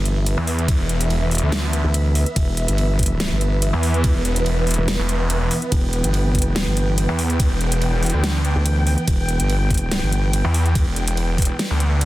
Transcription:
0.00 0.36 G1 loud
0.00 12.05 E3 medium
0.00 12.05 B3 medium
0.00 12.05 B4 medium
0.00 5.70 E5 medium
0.05 closed hi-hat medium
0.26 closed hi-hat medium
0.26 ride soft
0.38 0.78 E2 loud
0.47 open hi-hat loud
0.59 closed hi-hat soft
0.68 kick loud
0.68 closed hi-hat medium
0.68 ride medium
0.80 1.41 E1 medium
0.89 closed hi-hat medium
1.01 closed hi-hat medium
1.10 ride soft
1.31 closed hi-hat medium
1.31 open hi-hat medium
1.38 closed hi-hat medium
1.43 1.83 D2 loud
1.52 snare loud
1.52 closed hi-hat medium
1.52 ride medium
1.73 closed hi-hat medium
1.84 2.25 D2 medium
1.94 closed hi-hat medium
1.94 ride soft
2.15 open hi-hat medium
2.26 closed hi-hat soft
2.36 2.67 E1 loud
2.36 kick loud
2.36 closed hi-hat medium
2.36 ride medium
2.57 closed hi-hat medium
2.68 3.30 G1 medium
2.68 closed hi-hat medium
2.78 ride soft
2.99 kick medium
2.99 closed hi-hat medium
3.03 closed hi-hat medium
3.06 closed hi-hat medium
3.20 snare loud
3.20 closed hi-hat medium
3.20 ride medium
3.31 3.71 G1 loud
3.41 closed hi-hat medium
3.62 closed hi-hat medium
3.62 ride soft
3.73 4.13 E2 loud
3.83 open hi-hat medium
3.94 closed hi-hat soft
4.04 kick loud
4.04 closed hi-hat medium
4.04 ride medium
4.15 4.76 E1 medium
4.25 closed hi-hat medium
4.36 closed hi-hat medium
4.46 ride soft
4.67 closed hi-hat medium
4.67 open hi-hat medium
4.74 closed hi-hat medium
4.78 4.97 E1 loud
4.88 snare loud
4.88 closed hi-hat medium
4.88 ride medium
4.99 5.39 E1 loud
5.09 closed hi-hat medium
5.30 closed hi-hat medium
5.30 ride soft
5.41 5.49 E1 loud
5.51 open hi-hat medium
5.62 closed hi-hat soft
5.72 6.02 E1 loud
5.72 12.05 G5 medium
5.72 kick loud
5.72 closed hi-hat medium
5.72 ride medium
5.93 closed hi-hat medium
6.04 6.65 G1 medium
6.04 closed hi-hat medium
6.14 ride soft
6.35 kick medium
6.35 closed hi-hat soft
6.39 closed hi-hat medium
6.42 closed hi-hat medium
6.56 snare loud
6.56 closed hi-hat medium
6.56 ride medium
6.67 7.07 G1 loud
6.77 closed hi-hat medium
6.98 closed hi-hat medium
6.98 ride soft
7.09 7.49 E2 loud
7.19 open hi-hat medium
7.30 closed hi-hat soft
7.40 kick loud
7.40 closed hi-hat medium
7.40 ride medium
7.51 8.12 E1 medium
7.61 closed hi-hat soft
7.72 closed hi-hat medium
7.82 ride soft
8.03 closed hi-hat medium
8.03 open hi-hat medium
8.10 closed hi-hat medium
8.14 8.54 D2 loud
8.24 snare loud
8.24 closed hi-hat medium
8.24 ride medium
8.45 closed hi-hat medium
8.56 8.96 D2 loud
8.66 closed hi-hat medium
8.66 ride soft
8.87 open hi-hat medium
8.98 closed hi-hat soft
9.08 9.38 E1 loud
9.08 kick loud
9.08 closed hi-hat medium
9.08 ride medium
9.29 closed hi-hat medium
9.40 10.01 G1 medium
9.40 closed hi-hat medium
9.50 ride soft
9.70 kick medium
9.70 closed hi-hat soft
9.74 closed hi-hat medium
9.78 closed hi-hat medium
9.91 snare loud
9.91 closed hi-hat medium
9.91 ride medium
10.03 10.43 G1 loud
10.12 closed hi-hat medium
10.33 closed hi-hat medium
10.33 ride medium
10.45 10.85 E2 loud
10.54 open hi-hat loud
10.66 closed hi-hat soft
10.75 kick loud
10.75 closed hi-hat medium
10.75 ride medium
10.87 11.48 E1 medium
10.96 closed hi-hat medium
11.08 closed hi-hat medium
11.17 ride soft
11.38 kick medium
11.38 closed hi-hat medium
11.38 open hi-hat medium
11.45 closed hi-hat medium
11.59 snare loud
11.59 closed hi-hat medium
11.59 ride medium
11.70 12.05 D2 loud
11.80 closed hi-hat medium
12.01 closed hi-hat medium
12.01 ride soft

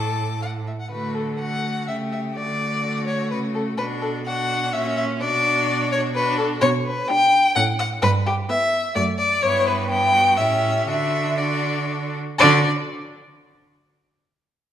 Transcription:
0.00 0.68 A2 medium
0.00 0.67 A4 medium
0.00 0.38 A5 medium
0.00 0.42 D6 medium
0.42 0.50 F#5 medium
0.67 0.72 E5 soft
0.80 0.90 F#5 soft
0.91 1.90 D3 soft
0.91 1.36 A3 soft
0.91 1.36 F#4 soft
0.91 1.17 B4 medium
1.15 1.39 A4 medium
1.39 1.87 A3 soft
1.39 1.89 F#4 soft
1.39 1.87 F#5 medium
1.88 2.37 C#3 soft
1.88 2.35 A3 soft
1.88 2.37 G4 medium
1.88 1.96 E5 medium
2.12 2.20 E5 medium
2.35 3.32 D3 medium
2.35 3.79 A3 medium
2.35 3.77 F#4 medium
2.35 3.05 D5 medium
3.07 3.30 C#5 medium
3.31 3.78 C#3 medium
3.31 3.39 B4 medium
3.55 3.63 A4 medium
3.78 4.75 B2 medium
3.78 4.25 D4 medium
3.78 4.24 F#4 medium
3.78 3.86 B4 medium
4.02 4.10 A4 medium
4.25 4.75 D4 medium
4.25 4.72 F#4 medium
4.25 4.74 F#5 medium
4.72 5.22 A#2 medium
4.72 5.21 C#4 medium
4.72 5.20 F#4 medium
4.72 4.96 E5 loud
4.97 5.05 E5 medium
5.20 6.61 B2 medium
5.20 6.15 D4 medium
5.20 6.13 F#4 medium
5.20 5.91 D5 loud
5.92 6.00 C#5 loud
6.15 6.62 D4 medium
6.15 6.61 F#4 medium
6.15 6.37 B4 loud
6.38 6.46 A4 medium
6.61 6.99 B2 loud
6.61 6.69 C#5 loud
6.85 7.10 B4 medium
7.08 7.45 D4 medium
7.08 7.44 G4 medium
7.08 7.55 G5 loud
7.55 7.93 A2 medium
7.55 7.91 C#4 medium
7.55 7.91 A4 medium
7.55 7.64 F#5 loud
7.79 7.87 F#5 loud
8.02 8.39 G2 loud
8.02 8.10 B4 loud
8.26 8.34 G4 medium
8.49 8.84 B3 medium
8.49 8.84 E4 medium
8.49 8.95 E5 loud
8.95 9.33 F#2 medium
8.95 9.31 A3 medium
8.95 9.31 F#4 medium
8.95 9.03 D5 loud
9.19 9.44 D5 loud
9.43 10.40 G2 medium
9.43 9.87 B3 medium
9.43 9.87 E4 medium
9.43 9.68 C#5 loud
9.67 9.90 B4 medium
9.89 10.39 B3 medium
9.89 10.15 E4 medium
9.89 10.39 G5 loud
10.14 10.38 F#4 medium
10.37 10.87 A2 medium
10.37 10.89 C#4 medium
10.37 10.88 G4 medium
10.37 10.87 E5 loud
10.87 12.16 D3 medium
10.87 11.38 D4 medium
10.87 11.37 F#4 medium
10.87 11.39 E5 medium
11.38 12.17 D4 medium
11.38 12.17 F#4 medium
11.38 12.14 D5 medium
12.39 12.68 D3 loud
12.39 12.68 D4 medium
12.39 12.67 F#4 loud
12.39 12.67 D5 loud

